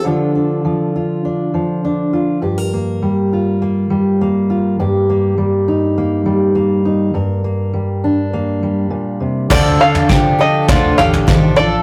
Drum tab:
CC |----------------|----------------|----------------|----------------|
SD |----------------|----------------|----------------|----------------|
FT |----------------|----------------|----------------|----------------|
BD |----------------|----------------|----------------|----------------|

CC |x---------------|
SD |o---o---o---o---|
FT |o--o----o-oo----|
BD |o---o---o---o---|